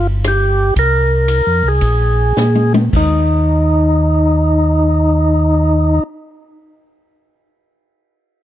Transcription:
Already playing: G1
0.24 G4, cross-stick, hi-hat pedal, ride
0.76 C2 A#4, kick, ride
1.28 hi-hat pedal, ride
1.47 F2
1.64 C2 G#4
1.81 A#1, kick, ride
2.36 A#2, snare, hi-hat pedal
2.55 high tom
2.74 high tom
2.93 D#2 D#4, kick, crash

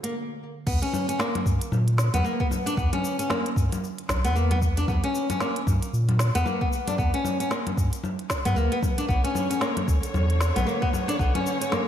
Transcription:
Already playing: D3
0.03 A#3, closed hi-hat
0.67 E2 B3, kick, crash, shaker
0.82 C#4, closed hi-hat
0.93 low conga, shaker
1.09 C#4, closed hi-hat, shaker
1.19 A#3, snare, shaker
1.35 closed hi-hat, low conga
1.46 G2, kick, shaker
1.61 closed hi-hat, shaker
1.72 A#2, low conga, shaker
1.88 closed hi-hat
1.98 snare, shaker
2.14 E2 B3, closed hi-hat, low conga, shaker
2.24 A#3, shaker
2.40 B3, kick
2.51 low conga, shaker
2.66 D4, closed hi-hat, shaker
2.77 E2 B3, kick, shaker
2.93 C#4, closed hi-hat, low conga
3.04 shaker
3.19 C#4, closed hi-hat, shaker
3.30 A#3, snare, low conga, shaker
3.46 closed hi-hat
3.56 G2, kick, shaker
3.72 closed hi-hat, low conga, shaker
3.84 shaker
3.98 closed hi-hat
4.09 B1, kick, snare, low conga, shaker
4.24 E2 B3, closed hi-hat, shaker
4.36 A#3, shaker
4.51 B3, closed hi-hat, low conga
4.62 kick, shaker
4.77 D4, closed hi-hat, shaker
4.88 E2 B3, kick, low conga, shaker
5.04 C#4, closed hi-hat
5.15 shaker
5.30 C#4, closed hi-hat, low conga, shaker
5.40 A#3, snare, shaker
5.56 closed hi-hat
5.67 G2, kick, low conga, shaker
5.82 closed hi-hat, shaker
5.93 A#2, shaker
6.09 closed hi-hat, low conga
6.19 snare, shaker
6.35 E2 B3, closed hi-hat, shaker
6.46 A#3, low conga, shaker
6.61 B3, kick
6.73 shaker
6.88 D4, closed hi-hat, low conga, shaker
6.98 E2 B3, kick, shaker
7.14 C#4, closed hi-hat
7.25 low conga, shaker
7.40 C#4, closed hi-hat, shaker
7.51 A#3, snare, shaker
7.67 closed hi-hat, low conga
7.77 G2, kick, shaker
7.93 closed hi-hat, shaker
8.04 low conga, shaker
8.19 closed hi-hat
8.30 kick, snare, shaker
8.45 G2 B3, closed hi-hat, low conga, shaker
8.56 D2 A#3, shaker
8.72 B3, closed hi-hat
8.83 kick, low conga, shaker
8.98 D4, closed hi-hat, shaker
9.08 B1 D3 B3 C#5, kick, shaker
9.24 C#4, closed hi-hat
9.35 low conga, shaker
9.50 C#4, closed hi-hat, shaker
9.61 A#3, snare, shaker
9.77 closed hi-hat, low conga
9.88 D2, kick, shaker
10.03 closed hi-hat, shaker
10.14 E2, low conga, shaker
10.30 closed hi-hat
10.41 snare, shaker
10.56 B1 B3, closed hi-hat, low conga, shaker
10.67 A#3, shaker
10.82 B3, kick
10.93 low conga, shaker
11.08 D4, closed hi-hat, shaker
11.19 B1 B3, kick, shaker
11.35 C#4, closed hi-hat, low conga
11.47 shaker
11.61 C#4, closed hi-hat, shaker
11.72 A#3, snare, low conga, shaker

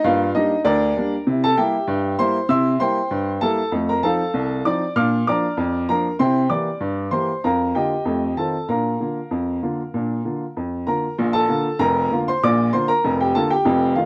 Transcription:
0.04 G2 A#3 F4 F5
0.35 G3 A#3 D4 D#4 D#5
0.65 D2 D4 A#4 D5
0.97 G3 A#3 D4
1.27 C3 E4
1.44 A4 A5
1.57 G3 A#3 E4 G4 E5 G5
1.88 G2
2.19 G3 A#3 E4 C5 C6
2.49 C3 E4 E5 C6 E6
2.80 G3 A#3 E4 C5 G5 C6
3.11 G2
3.41 G3 A#3 E4 A4 A5
3.72 F2 A3
3.89 A#4 A#5
4.03 F3 C4 D#4 A4 F5 A5
4.34 C2
4.65 F3 C4 D#4 D5 D6
4.96 A#2 D4 F5 D6 F6
5.27 F3 A#3 D4 D5 A#5 D6
5.57 F2
5.89 F3 A#3 D4 A#4 A#5
6.19 C3 E4 C5 G5 C6
6.50 E3 A#3 G4 D5 D6
6.81 G2
7.11 E3 A#3 G4 C5 C6
7.44 F2 A#4 F5 A#5
7.75 D3 A#3 F4 G4 D#5 G5
8.05 F2 A3
8.37 D#3 C4 F4 A4 A5
8.69 A#2 D4 A#4 F5 A#5
9.00 D3 A#3 F4
9.31 F2
9.63 D3 A#3 F4
9.94 A#2 D4
10.25 D3 A#3 F4
10.57 F2
10.87 D3 A#3 F4 A#4 A#5
11.18 A#1 A#2
11.33 A4 A5
11.48 D3 A#3 F4
11.79 F1 F2 A#4 A#5
12.11 D3 A#3 F4
12.28 C5 C6
12.43 A#1 A#2 D5 D6
12.73 D3 A#3 F4 C5 C6
12.88 A#4 A#5
13.04 F1 F2
13.20 G4 G5
13.35 D3 A#3 F4 A4 A5
13.50 G4 G5
13.65 F1 F2
13.96 D#3 A3 F4 F5

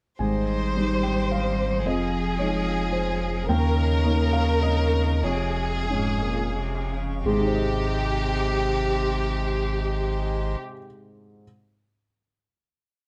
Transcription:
0.19 G#1 G#2 G3 D#4 C5 D#5 G#5
0.77 G3 D#4 C5
1.03 G5
1.31 F5
1.84 F1 F2 F3 G#3 F4 G#4 D#5
2.39 G#3 D#4 C#5 D#5
2.92 C5
3.49 D#2 C#3 A#3 D#4 A#4 C#5 G5
4.05 A#3 D#4 C#5
4.33 F5
4.62 D#5
5.23 F1 F2 C3 G#3 F4 G#4 C#5
5.89 G#2 G#3 C#4 C#5
6.21 A#2
6.56 C3
6.91 C#3
7.25 G#1 G#2 C3 G#3 D#4 G4 G#4 C5
7.33 G#3
7.40 D#4
7.47 C5
7.54 D#5

